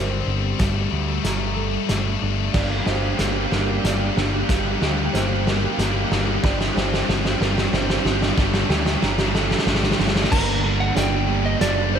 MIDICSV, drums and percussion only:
0, 0, Header, 1, 2, 480
1, 0, Start_track
1, 0, Key_signature, -2, "minor"
1, 0, Tempo, 647948
1, 445, Time_signature, 3, 2, 24, 8
1, 8884, End_track
2, 0, Start_track
2, 0, Title_t, "Drums"
2, 439, Note_on_c, 9, 38, 67
2, 439, Note_on_c, 9, 42, 62
2, 442, Note_on_c, 9, 36, 95
2, 513, Note_off_c, 9, 38, 0
2, 513, Note_off_c, 9, 42, 0
2, 517, Note_off_c, 9, 36, 0
2, 923, Note_on_c, 9, 38, 66
2, 923, Note_on_c, 9, 42, 69
2, 997, Note_off_c, 9, 38, 0
2, 997, Note_off_c, 9, 42, 0
2, 1400, Note_on_c, 9, 38, 78
2, 1400, Note_on_c, 9, 42, 71
2, 1474, Note_off_c, 9, 38, 0
2, 1474, Note_off_c, 9, 42, 0
2, 1883, Note_on_c, 9, 38, 78
2, 1883, Note_on_c, 9, 49, 86
2, 1884, Note_on_c, 9, 36, 101
2, 1957, Note_off_c, 9, 38, 0
2, 1957, Note_off_c, 9, 49, 0
2, 1958, Note_off_c, 9, 36, 0
2, 2121, Note_on_c, 9, 38, 75
2, 2195, Note_off_c, 9, 38, 0
2, 2361, Note_on_c, 9, 38, 79
2, 2361, Note_on_c, 9, 42, 71
2, 2435, Note_off_c, 9, 38, 0
2, 2435, Note_off_c, 9, 42, 0
2, 2608, Note_on_c, 9, 38, 82
2, 2682, Note_off_c, 9, 38, 0
2, 2849, Note_on_c, 9, 38, 90
2, 2849, Note_on_c, 9, 42, 72
2, 2923, Note_off_c, 9, 38, 0
2, 2923, Note_off_c, 9, 42, 0
2, 3091, Note_on_c, 9, 38, 81
2, 3165, Note_off_c, 9, 38, 0
2, 3328, Note_on_c, 9, 36, 102
2, 3330, Note_on_c, 9, 38, 88
2, 3330, Note_on_c, 9, 42, 67
2, 3402, Note_off_c, 9, 36, 0
2, 3404, Note_off_c, 9, 38, 0
2, 3404, Note_off_c, 9, 42, 0
2, 3570, Note_on_c, 9, 38, 81
2, 3644, Note_off_c, 9, 38, 0
2, 3813, Note_on_c, 9, 38, 88
2, 3813, Note_on_c, 9, 42, 68
2, 3887, Note_off_c, 9, 38, 0
2, 3887, Note_off_c, 9, 42, 0
2, 4054, Note_on_c, 9, 38, 96
2, 4128, Note_off_c, 9, 38, 0
2, 4291, Note_on_c, 9, 38, 96
2, 4291, Note_on_c, 9, 42, 73
2, 4365, Note_off_c, 9, 38, 0
2, 4365, Note_off_c, 9, 42, 0
2, 4531, Note_on_c, 9, 38, 89
2, 4605, Note_off_c, 9, 38, 0
2, 4768, Note_on_c, 9, 36, 113
2, 4773, Note_on_c, 9, 38, 91
2, 4843, Note_off_c, 9, 36, 0
2, 4847, Note_off_c, 9, 38, 0
2, 4894, Note_on_c, 9, 38, 86
2, 4968, Note_off_c, 9, 38, 0
2, 5016, Note_on_c, 9, 38, 91
2, 5090, Note_off_c, 9, 38, 0
2, 5139, Note_on_c, 9, 38, 94
2, 5213, Note_off_c, 9, 38, 0
2, 5255, Note_on_c, 9, 38, 98
2, 5329, Note_off_c, 9, 38, 0
2, 5373, Note_on_c, 9, 38, 96
2, 5447, Note_off_c, 9, 38, 0
2, 5493, Note_on_c, 9, 38, 96
2, 5567, Note_off_c, 9, 38, 0
2, 5614, Note_on_c, 9, 38, 105
2, 5688, Note_off_c, 9, 38, 0
2, 5728, Note_on_c, 9, 38, 103
2, 5802, Note_off_c, 9, 38, 0
2, 5852, Note_on_c, 9, 38, 106
2, 5926, Note_off_c, 9, 38, 0
2, 5971, Note_on_c, 9, 38, 100
2, 6045, Note_off_c, 9, 38, 0
2, 6091, Note_on_c, 9, 38, 100
2, 6165, Note_off_c, 9, 38, 0
2, 6205, Note_on_c, 9, 36, 109
2, 6205, Note_on_c, 9, 38, 104
2, 6279, Note_off_c, 9, 36, 0
2, 6279, Note_off_c, 9, 38, 0
2, 6324, Note_on_c, 9, 38, 101
2, 6398, Note_off_c, 9, 38, 0
2, 6446, Note_on_c, 9, 38, 102
2, 6520, Note_off_c, 9, 38, 0
2, 6565, Note_on_c, 9, 38, 104
2, 6639, Note_off_c, 9, 38, 0
2, 6685, Note_on_c, 9, 38, 108
2, 6759, Note_off_c, 9, 38, 0
2, 6804, Note_on_c, 9, 38, 108
2, 6879, Note_off_c, 9, 38, 0
2, 6925, Note_on_c, 9, 38, 109
2, 6999, Note_off_c, 9, 38, 0
2, 7044, Note_on_c, 9, 38, 102
2, 7101, Note_off_c, 9, 38, 0
2, 7101, Note_on_c, 9, 38, 104
2, 7162, Note_off_c, 9, 38, 0
2, 7162, Note_on_c, 9, 38, 122
2, 7222, Note_off_c, 9, 38, 0
2, 7222, Note_on_c, 9, 38, 114
2, 7285, Note_off_c, 9, 38, 0
2, 7285, Note_on_c, 9, 38, 107
2, 7342, Note_off_c, 9, 38, 0
2, 7342, Note_on_c, 9, 38, 110
2, 7404, Note_off_c, 9, 38, 0
2, 7404, Note_on_c, 9, 38, 113
2, 7463, Note_off_c, 9, 38, 0
2, 7463, Note_on_c, 9, 38, 102
2, 7523, Note_off_c, 9, 38, 0
2, 7523, Note_on_c, 9, 38, 109
2, 7585, Note_off_c, 9, 38, 0
2, 7585, Note_on_c, 9, 38, 107
2, 7645, Note_on_c, 9, 36, 114
2, 7648, Note_on_c, 9, 57, 117
2, 7659, Note_off_c, 9, 38, 0
2, 7719, Note_off_c, 9, 36, 0
2, 7722, Note_off_c, 9, 57, 0
2, 8123, Note_on_c, 9, 38, 89
2, 8123, Note_on_c, 9, 42, 77
2, 8197, Note_off_c, 9, 38, 0
2, 8197, Note_off_c, 9, 42, 0
2, 8601, Note_on_c, 9, 38, 93
2, 8601, Note_on_c, 9, 42, 88
2, 8675, Note_off_c, 9, 38, 0
2, 8675, Note_off_c, 9, 42, 0
2, 8884, End_track
0, 0, End_of_file